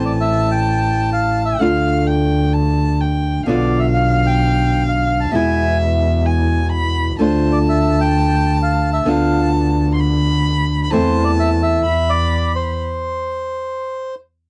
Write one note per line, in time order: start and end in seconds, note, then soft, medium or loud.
0.00 1.52 A1 medium
0.00 1.59 E3 medium
0.00 1.59 A3 medium
0.00 1.61 C4 medium
0.00 1.62 A5 medium
0.06 0.13 D5 medium
0.21 0.50 E5 medium
0.51 1.10 G5 medium
1.13 1.43 F5 medium
1.45 1.60 E5 medium
1.59 3.37 D2 medium
1.59 3.45 D3 medium
1.59 3.45 A3 medium
1.59 3.46 D4 medium
1.59 3.46 F4 medium
1.59 2.04 F5 medium
1.59 2.08 F5 medium
2.07 2.55 G5 medium
2.53 3.02 A5 medium
3.01 3.46 G5 medium
3.46 5.24 B1 medium
3.46 5.30 B2 medium
3.46 5.32 D3 medium
3.46 5.32 B3 medium
3.46 5.33 D4 medium
3.46 5.33 F4 medium
3.46 3.79 D5 medium
3.46 5.33 F5 medium
3.79 3.86 E5 medium
3.94 4.26 F5 medium
4.26 4.83 G5 medium
4.88 5.19 F5 medium
5.20 5.35 A5 medium
5.31 7.10 E2 medium
5.31 7.18 B2 medium
5.31 7.18 E3 medium
5.31 7.19 G#3 medium
5.31 7.20 B3 medium
5.31 6.27 E5 medium
5.35 7.20 E4 medium
5.35 5.77 G#5 medium
6.26 6.71 G#5 medium
6.72 7.16 B5 medium
7.19 8.97 D2 medium
7.19 9.04 D3 medium
7.19 9.05 A3 medium
7.19 9.06 D4 medium
7.19 9.06 F4 medium
7.19 7.53 C5 medium
7.19 9.02 A5 medium
7.52 7.59 D5 medium
7.69 8.00 E5 medium
8.01 8.57 G5 medium
8.63 8.90 F5 medium
8.93 9.08 E5 medium
9.05 10.83 D2 medium
9.05 10.90 D3 medium
9.05 10.91 B3 medium
9.05 10.91 D4 medium
9.05 10.92 F4 medium
9.05 9.50 F5 medium
9.05 9.89 A5 medium
9.94 10.01 C6 medium
9.99 10.83 B5 medium
10.84 10.92 B5 medium
10.90 11.80 E2 medium
10.90 11.83 E3 medium
10.90 11.84 A3 medium
10.90 11.84 C4 medium
10.90 11.85 E4 medium
10.90 11.24 C5 medium
10.90 11.84 A5 medium
11.24 11.31 D5 medium
11.39 11.50 E5 medium
11.63 12.10 E5 medium
11.86 12.74 E2 medium
11.86 12.74 B5 medium
12.10 12.52 D5 medium
12.55 14.15 C5 medium